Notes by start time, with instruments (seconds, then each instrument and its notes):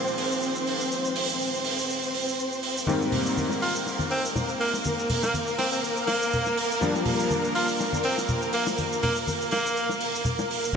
Already playing: electric grand piano A#2 D#3 F3 G#3 C4, violin section C4 C5
0.07 cabasa
0.18 open hi-hat
0.32 cabasa
0.43 cabasa
0.55 cabasa
0.67 open hi-hat
0.81 cabasa
0.92 cabasa
1.05 cabasa
1.16 open hi-hat
1.30 cabasa
1.41 cabasa
1.55 cabasa
1.64 open hi-hat
1.79 cabasa
1.90 cabasa
2.03 cabasa
2.14 open hi-hat
2.28 cabasa
2.39 cabasa
2.52 cabasa
2.63 open hi-hat
2.78 cabasa
2.87 electric grand piano G#2 D#3 G3 A#3 C4, violin section A#3 A#4, high conga, cabasa
3.01 high bongo, cabasa
3.12 open hi-hat, low conga
3.26 cabasa
3.37 high conga, cabasa
3.49 high bongo, cabasa
3.62 tenor saxophone F4, open hi-hat
3.76 cabasa
3.86 high bongo, cabasa
3.99 high conga, cabasa
4.11 tenor saxophone C4, open hi-hat
4.25 cabasa
4.36 high bongo, low conga, cabasa
4.49 cabasa
4.60 tenor saxophone A#3, open hi-hat
4.73 high bongo, cabasa
4.85 high conga, cabasa
4.99 cabasa
5.10 open hi-hat, low conga
5.23 tenor saxophone A#3, high bongo, cabasa
5.34 high conga, cabasa
5.47 cabasa
5.58 tenor saxophone C4, open hi-hat, high bongo
5.72 tenor saxophone C4, cabasa
5.84 cabasa
5.97 cabasa
6.07 tenor saxophone A#3, open hi-hat, high bongo
6.22 cabasa
6.33 low conga, cabasa
6.46 high bongo, cabasa
6.57 open hi-hat
6.72 cabasa
6.81 electric grand piano F3 G3 A#3 D4, high conga, cabasa
6.94 high bongo, cabasa
7.05 open hi-hat, low conga
7.19 cabasa
7.31 high bongo, high conga, cabasa
7.45 cabasa
7.55 tenor saxophone F4, open hi-hat
7.68 cabasa
7.80 high bongo, cabasa
7.93 high conga, cabasa
8.03 tenor saxophone C4, open hi-hat
8.18 high bongo, cabasa
8.28 low conga, cabasa
8.42 cabasa
8.53 tenor saxophone A#3, open hi-hat
8.67 high bongo, cabasa
8.78 high conga, cabasa
8.93 cabasa
9.03 tenor saxophone A#3, open hi-hat, high bongo, low conga
9.16 cabasa
9.27 high conga, cabasa
9.41 cabasa
9.51 tenor saxophone A#3, open hi-hat, high bongo
9.66 cabasa
9.77 cabasa
9.89 high bongo, cabasa
10.01 open hi-hat
10.15 cabasa
10.25 low conga, cabasa
10.39 high bongo, cabasa
10.51 open hi-hat
10.64 cabasa